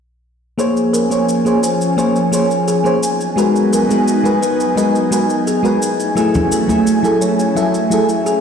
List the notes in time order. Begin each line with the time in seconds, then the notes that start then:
0.58 F3 A#3 C#4 G#4 C5 C#5 G#5, shaker
0.77 shaker
0.93 A#4, shaker
1.10 A#3 G#4 C5 C#5, shaker
1.29 shaker
1.45 A#3 G#4 C5 C#5, shaker
1.63 C5, shaker
1.81 shaker
1.97 A#3 G#4 C5 C#5, shaker
2.16 shaker
2.32 A#3 G#4 C5 C#5, shaker
2.51 shaker
2.68 G#4, shaker
2.84 A#3 G#4 C5 C#5, shaker
3.03 F#3 B3 D#4, shaker
3.21 shaker
3.36 G#3 F#4 G#4 A#4 B4, shaker
3.56 shaker
3.73 A#4, shaker
3.89 G#3 B3 F#4 A#4, shaker
4.08 shaker
4.23 G#3 F#4 A#4 B4, shaker
4.43 B4, shaker
4.60 shaker
4.76 G#3 F#4 A#4 B4 D#5, shaker
4.95 shaker
5.11 G#3 F#4 A#4 B4, shaker
5.30 shaker
5.47 G#4, shaker
5.63 G#3 F#4 A#4 B4, shaker
5.82 F#3 A3 C#4 E4, shaker
6.00 shaker
6.15 F#3 A3 E4 G#4, shaker
6.35 low conga, shaker
6.52 A4, shaker
6.67 F#3 A3 E4 G#5, high conga, shaker
6.87 shaker
7.03 F#3 E4 G#4 A4, shaker
7.21 C#5, shaker
7.40 shaker
7.55 F#3 E4 G#4 A4 E5, shaker
7.74 shaker
7.90 F#3 E4 G#4 A4, shaker
8.09 shaker
8.26 G#4, shaker